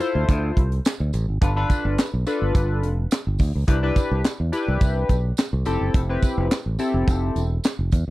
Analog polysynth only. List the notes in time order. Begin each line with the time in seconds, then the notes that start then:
0.00 E4 F4 A4 C5
1.41 D4 F4 A4 B4
1.56 D4 F4 A4 B4
2.27 D4 F4 A4 B4
3.67 D4 E4 G4 B4
3.83 D4 E4 G4 B4
4.52 D4 E4 G4 B4
5.66 C4 E4 G4 A4
6.09 C4 E4 G4 B4
6.79 C4 E4 G4 A4